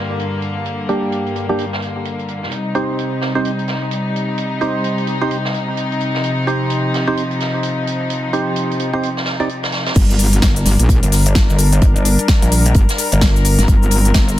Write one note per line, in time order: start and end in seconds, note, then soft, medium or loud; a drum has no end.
0.00 2.48 G2 medium
0.00 2.48 D3 medium
0.00 2.48 A#3 medium
0.20 closed hi-hat medium
0.42 closed hi-hat medium
0.56 closed hi-hat medium
0.66 closed hi-hat medium
0.89 1.46 G3 medium
0.89 1.46 A#3 medium
0.89 1.46 D4 medium
0.89 1.46 G4 medium
0.89 closed hi-hat medium
1.03 closed hi-hat medium
1.12 closed hi-hat medium
1.26 closed hi-hat soft
1.36 closed hi-hat medium
1.49 1.65 G3 medium
1.49 1.65 A#3 medium
1.49 1.65 D4 medium
1.49 1.65 G4 loud
1.59 closed hi-hat medium
1.73 snare soft
1.82 closed hi-hat medium
1.96 closed hi-hat medium
2.05 closed hi-hat medium
2.19 closed hi-hat soft
2.28 closed hi-hat medium
2.42 snare soft
2.42 closed hi-hat medium
2.52 9.92 C3 medium
2.52 6.20 G3 medium
2.52 9.92 D#4 medium
2.52 closed hi-hat medium
2.75 3.32 C4 medium
2.75 3.32 D#4 medium
2.75 3.32 G4 medium
2.75 3.32 C5 medium
2.75 closed hi-hat medium
2.89 closed hi-hat medium
2.99 closed hi-hat medium
3.12 closed hi-hat soft
3.21 snare soft
3.21 closed hi-hat medium
3.35 3.51 C4 loud
3.35 3.51 D#4 medium
3.35 3.51 G4 medium
3.35 3.51 C5 loud
3.35 closed hi-hat medium
3.45 closed hi-hat medium
3.59 closed hi-hat soft
3.68 snare soft
3.68 closed hi-hat medium
3.82 closed hi-hat medium
3.91 closed hi-hat medium
4.16 closed hi-hat medium
4.28 closed hi-hat medium
4.38 closed hi-hat medium
4.61 5.18 C4 medium
4.61 5.18 D#4 medium
4.61 5.18 G4 medium
4.61 5.18 C5 medium
4.61 closed hi-hat medium
4.75 closed hi-hat medium
4.84 closed hi-hat medium
4.98 closed hi-hat soft
5.07 closed hi-hat medium
5.21 5.37 C4 medium
5.21 5.37 D#4 medium
5.21 5.37 G4 medium
5.21 5.37 C5 loud
5.21 closed hi-hat medium
5.31 closed hi-hat medium
5.45 snare medium
5.45 closed hi-hat soft
5.54 closed hi-hat medium
5.68 closed hi-hat medium
5.77 closed hi-hat medium
5.91 closed hi-hat soft
6.01 closed hi-hat medium
6.15 snare soft
6.15 closed hi-hat medium
6.24 9.92 F3 medium
6.24 closed hi-hat medium
6.47 7.04 C4 medium
6.47 7.04 D#4 medium
6.47 7.04 G4 medium
6.47 7.04 C5 medium
6.47 closed hi-hat medium
6.61 closed hi-hat medium
6.70 closed hi-hat medium
6.84 closed hi-hat soft
6.94 snare soft
6.94 closed hi-hat medium
7.07 7.23 C4 loud
7.07 7.23 D#4 medium
7.07 7.23 G4 medium
7.07 7.23 C5 loud
7.07 closed hi-hat medium
7.17 closed hi-hat medium
7.31 closed hi-hat soft
7.40 snare soft
7.40 closed hi-hat medium
7.54 closed hi-hat medium
7.63 closed hi-hat medium
7.87 closed hi-hat medium
8.01 closed hi-hat medium
8.10 closed hi-hat medium
8.24 closed hi-hat soft
8.33 8.90 C4 medium
8.33 8.90 D#4 medium
8.33 8.90 G4 medium
8.33 8.90 C5 medium
8.33 closed hi-hat medium
8.47 closed hi-hat medium
8.56 closed hi-hat medium
8.70 closed hi-hat soft
8.80 closed hi-hat medium
8.93 9.09 C4 loud
8.93 9.09 D#4 medium
8.93 9.09 G4 medium
8.93 9.09 C5 loud
8.93 closed hi-hat medium
9.03 closed hi-hat medium
9.17 snare medium
9.17 closed hi-hat medium
9.26 snare loud
9.26 closed hi-hat medium
9.40 9.49 C4 medium
9.40 9.49 D#4 medium
9.40 9.49 G4 medium
9.40 9.49 D5 loud
9.40 closed hi-hat medium
9.40 closed hi-hat soft
9.49 closed hi-hat medium
9.63 snare loud
9.63 closed hi-hat soft
9.63 closed hi-hat medium
9.72 snare loud
9.72 closed hi-hat medium
9.86 snare medium
9.86 closed hi-hat medium
9.96 10.41 G1 loud
9.96 14.39 G3 medium
9.96 13.64 D4 medium
9.96 14.39 A#4 medium
9.96 kick loud
9.96 closed hi-hat medium
9.96 crash loud
9.96 shaker soft
10.10 shaker soft
10.19 closed hi-hat medium
10.19 open hi-hat loud
10.19 shaker medium
10.33 closed hi-hat medium
10.33 shaker soft
10.42 10.64 G1 loud
10.42 kick loud
10.42 snare loud
10.42 closed hi-hat medium
10.42 shaker soft
10.56 closed hi-hat medium
10.56 shaker soft
10.65 10.77 G1 loud
10.65 snare soft
10.65 closed hi-hat medium
10.65 open hi-hat loud
10.65 shaker medium
10.80 11.01 A#1 loud
10.80 closed hi-hat medium
10.80 shaker soft
10.89 kick loud
10.89 closed hi-hat medium
10.89 shaker soft
11.03 11.47 G1 loud
11.03 closed hi-hat medium
11.03 closed hi-hat soft
11.03 shaker soft
11.12 snare soft
11.12 closed hi-hat medium
11.12 open hi-hat loud
11.12 shaker medium
11.26 closed hi-hat medium
11.26 shaker soft
11.35 kick loud
11.35 snare loud
11.35 closed hi-hat medium
11.35 shaker soft
11.49 11.81 G1 loud
11.49 shaker soft
11.58 closed hi-hat medium
11.58 open hi-hat loud
11.58 shaker medium
11.73 closed hi-hat medium
11.73 shaker soft
11.82 11.94 G1 medium
11.82 kick loud
11.82 closed hi-hat medium
11.82 shaker soft
11.96 12.17 G1 loud
11.96 closed hi-hat soft
11.96 shaker soft
12.05 closed hi-hat medium
12.05 open hi-hat loud
12.05 shaker medium
12.19 closed hi-hat medium
12.19 shaker soft
12.28 kick loud
12.28 snare loud
12.28 closed hi-hat medium
12.28 shaker soft
12.42 12.74 A#1 loud
12.42 closed hi-hat soft
12.42 shaker soft
12.52 closed hi-hat medium
12.52 open hi-hat loud
12.52 shaker medium
12.66 closed hi-hat medium
12.66 shaker soft
12.74 12.87 G1 medium
12.74 kick loud
12.74 closed hi-hat medium
12.74 shaker soft
12.89 snare medium
12.89 closed hi-hat medium
12.89 shaker soft
12.98 closed hi-hat medium
12.98 open hi-hat loud
12.98 shaker medium
13.12 13.56 G1 medium
13.12 closed hi-hat medium
13.12 shaker soft
13.21 kick loud
13.21 snare loud
13.21 closed hi-hat medium
13.21 shaker soft
13.36 closed hi-hat soft
13.36 shaker soft
13.45 closed hi-hat medium
13.45 open hi-hat loud
13.45 shaker medium
13.59 13.67 G1 loud
13.59 snare soft
13.59 closed hi-hat medium
13.59 shaker soft
13.68 14.13 G1 loud
13.68 14.39 C4 medium
13.68 kick loud
13.68 closed hi-hat medium
13.68 shaker soft
13.83 shaker soft
13.91 closed hi-hat medium
13.91 open hi-hat loud
13.91 shaker medium
14.05 closed hi-hat medium
14.05 shaker soft
14.14 14.36 G1 medium
14.14 kick loud
14.14 snare loud
14.14 closed hi-hat medium
14.14 shaker soft
14.29 closed hi-hat medium
14.29 shaker soft